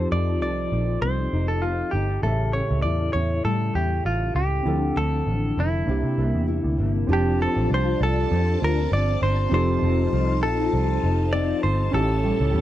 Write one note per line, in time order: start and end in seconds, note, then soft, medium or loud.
0.00 2.24 F3 medium
0.00 1.03 C4 medium
0.00 2.18 C4 medium
0.00 2.19 D#4 medium
0.00 2.20 G4 medium
0.00 0.16 A4 medium
0.00 2.21 A4 medium
0.12 0.42 F2 medium
0.12 0.72 D#4 medium
0.12 0.40 D5 medium
0.41 0.66 C2 medium
0.41 1.64 A4 medium
0.41 1.02 D5 medium
0.72 0.96 A#1 medium
0.72 1.32 D#4 medium
1.02 1.26 C2 medium
1.02 2.31 C4 medium
1.02 1.46 C5 medium
1.33 1.82 F1 medium
1.33 1.92 D#4 medium
1.48 1.63 A4 medium
1.62 1.91 F4 medium
1.62 3.48 A4 medium
1.91 2.18 G1 medium
1.91 2.31 D#4 medium
1.91 2.21 G4 medium
2.22 2.61 A1 medium
2.22 4.66 A2 medium
2.22 4.62 C#3 medium
2.22 4.63 G4 medium
2.22 2.52 A4 medium
2.22 4.62 E5 medium
2.27 4.64 A4 medium
2.53 3.13 C#4 medium
2.53 2.82 C#5 medium
2.71 2.82 C#2 medium
2.82 3.09 E2 medium
2.82 4.06 E4 medium
2.82 3.13 D5 medium
3.13 3.39 E2 medium
3.13 3.74 C#4 medium
3.13 3.42 C#5 medium
3.45 3.69 A2 loud
3.45 4.73 G3 medium
3.45 3.73 A4 medium
3.75 4.00 E2 medium
3.75 4.34 C#4 medium
3.75 4.06 G4 medium
4.05 4.30 A1 medium
4.05 4.34 F4 medium
4.35 4.60 C#2 medium
4.35 4.73 C#4 medium
4.35 4.98 G4 medium
4.63 4.90 D2 medium
4.63 5.88 D3 medium
4.63 5.85 F3 medium
4.63 5.84 C4 medium
4.63 5.85 E4 medium
4.68 5.86 A4 medium
4.96 5.21 D2 medium
4.96 5.57 C4 medium
4.96 5.60 A4 medium
5.27 5.51 A1 medium
5.57 5.82 F1 medium
5.57 6.17 C4 medium
5.57 6.46 E4 medium
5.85 6.01 C2 medium
5.85 7.16 C3 medium
5.85 7.05 A#3 medium
5.85 7.06 D4 medium
5.85 7.07 E4 medium
5.90 7.08 G4 medium
6.03 6.15 C3 medium
6.18 6.31 C2 medium
6.18 6.77 A#3 medium
6.34 6.59 E2 medium
6.47 7.15 E4 medium
6.64 6.76 D2 medium
6.78 7.03 G1 medium
6.78 7.15 A#3 medium
7.07 7.46 F1 loud
7.07 9.51 F3 medium
7.07 9.46 C4 medium
7.07 9.47 D4 medium
7.07 9.48 F4 medium
7.07 9.47 G4 medium
7.07 9.49 D5 medium
7.07 9.49 A5 medium
7.11 7.39 G4 medium
7.11 9.49 A5 medium
7.39 8.30 C4 medium
7.39 7.69 A4 medium
7.57 7.67 A1 medium
7.69 7.94 C2 medium
7.69 8.60 D4 medium
7.74 8.03 C5 loud
8.01 8.25 C2 medium
8.01 8.58 A4 loud
8.31 8.55 F2 loud
8.31 8.92 C4 medium
8.61 8.86 D2 medium
8.61 9.20 D4 medium
8.61 8.93 A#4 loud
8.92 9.16 G1 medium
8.92 9.81 C4 medium
8.92 9.22 D5 loud
9.22 9.46 G1 medium
9.22 9.58 D4 medium
9.22 9.53 C5 medium
9.49 9.76 F1 loud
9.49 11.93 F3 medium
9.49 11.88 C4 medium
9.49 11.89 D#4 medium
9.49 11.91 D#4 medium
9.49 11.91 F4 medium
9.49 11.90 G4 medium
9.49 12.61 A5 medium
9.54 11.91 A4 medium
9.54 10.40 C5 loud
9.82 10.06 F1 loud
9.82 10.72 C4 medium
10.12 10.43 C2 loud
10.12 11.03 D#4 medium
10.43 10.67 A#1 loud
10.43 11.36 A4 loud
10.43 12.27 A4 medium
10.73 10.97 C2 medium
10.73 11.32 C4 medium
11.04 11.52 F1 medium
11.04 11.62 D#4 medium
11.33 12.01 C4 medium
11.33 11.63 D5 loud
11.63 11.88 G1 medium
11.63 12.00 D#4 medium
11.63 11.91 C5 medium
11.91 12.31 A1 loud
11.91 12.61 A2 medium
11.91 12.61 C#4 medium
11.91 12.61 E4 medium
11.91 12.61 G4 medium
11.91 12.61 A4 medium
11.91 12.61 C#5 medium
11.96 12.61 A4 medium
12.24 12.61 G3 medium
12.40 12.51 C#2 loud
12.53 12.61 E2 medium
12.53 12.61 C#4 medium